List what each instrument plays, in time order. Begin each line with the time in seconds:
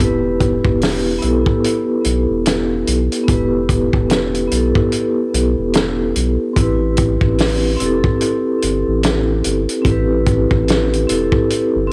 Already playing: vibraphone B3
0.00 analog synth bass E1, vibraphone E4 G4, closed hi-hat
0.04 vibraphone B4
0.40 kick, closed hi-hat
0.65 analog synth bass E1, kick
0.81 snare, open hi-hat
1.19 vibraphone B3 E4, closed hi-hat
1.23 analog synth bass B1, vibraphone G4
1.28 vibraphone A4
1.46 kick
1.64 closed hi-hat
2.04 analog synth bass B1, closed hi-hat
2.30 analog synth bass E1
2.46 snare, closed hi-hat
2.87 analog synth bass B1, closed hi-hat
3.12 closed hi-hat
3.24 vibraphone B3 E4
3.28 analog synth bass E1, vibraphone G4, kick, closed hi-hat
3.33 vibraphone B4
3.69 kick, closed hi-hat
3.93 analog synth bass E1, kick
4.10 snare, closed hi-hat
4.35 closed hi-hat
4.48 vibraphone B3 E4, closed hi-hat
4.52 analog synth bass B1, vibraphone G4
4.57 vibraphone A4
4.75 kick
4.92 closed hi-hat
5.34 analog synth bass B1, closed hi-hat
5.58 analog synth bass E1
5.74 snare, closed hi-hat
6.16 analog synth bass B1, closed hi-hat
6.53 analog synth bass A1, vibraphone C4 E4, kick, closed hi-hat
6.59 vibraphone G4 B4
6.97 kick, closed hi-hat
7.21 analog synth bass A1, kick
7.38 snare, open hi-hat
7.76 vibraphone C4 E4, closed hi-hat
7.81 analog synth bass E1, vibraphone G4
7.86 vibraphone A4
8.04 kick
8.21 closed hi-hat
8.62 analog synth bass G1, closed hi-hat
8.88 analog synth bass A1
9.03 snare, closed hi-hat
9.44 analog synth bass G1, closed hi-hat
9.69 closed hi-hat
9.82 analog synth bass A1, vibraphone C4 E4, kick, closed hi-hat
9.88 vibraphone G4 B4
10.26 kick, closed hi-hat
10.51 analog synth bass A1, kick
10.68 snare, closed hi-hat
10.93 closed hi-hat
11.07 analog synth bass E1, vibraphone C4 E4 G4, closed hi-hat
11.12 vibraphone A4
11.32 kick
11.50 closed hi-hat
11.76 analog synth bass G1
11.87 vibraphone C4